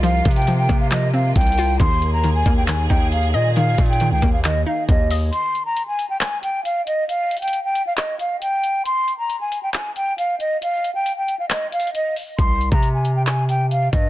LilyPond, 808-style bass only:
\new Staff \with { instrumentName = "808-style bass" } { \clef bass \time 4/4 \key ees \mixolydian \tempo 4 = 136 c,8 c4 c4. c,4 | ees,4. ees,4 ees,4 bes,8~ | bes,8 bes,8. des,16 ees,4 r8 ees,4 | r1 |
r1 | r1 | r1 | c,8. c2~ c8. g,8 | }